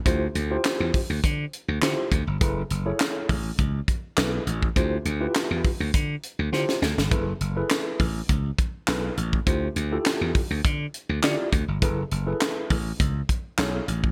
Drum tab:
HH |x-x-x-o-x-x-x-x-|x-x-x-o-x-x-x-x-|x-x-x-o-x-x-----|x-x-x-o-x-x-x-x-|
CP |----x-------x---|----x-------x---|----x-----------|----x-------x---|
SD |----o-------o---|----o-------o---|----o-------oooo|----o-------o---|
BD |o-----o-o-----o-|o-----o-o-o----o|o-----o-o-------|o-----o-o-o----o|

HH |x-x-x-o-x-x-x-x-|x-x-x-o-x-x-x-x-|
CP |----x-------x---|----x-------x---|
SD |----o-------o---|----o-------o---|
BD |o-----o-o-----o-|o-----o-o-o----o|